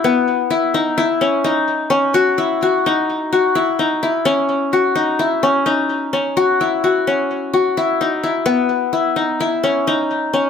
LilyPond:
\new Staff \with { instrumentName = "Qanun" } { \time 9/8 \key fis \dorian \tempo 4. = 86 b4 e'8 dis'8 e'8 cis'8 dis'4 cis'8 | fis'8 e'8 fis'8 dis'4 fis'8 e'8 dis'8 e'8 | cis'4 fis'8 dis'8 e'8 cis'8 dis'4 cis'8 | fis'8 e'8 fis'8 cis'4 fis'8 e'8 dis'8 e'8 |
b4 e'8 dis'8 e'8 cis'8 dis'4 cis'8 | }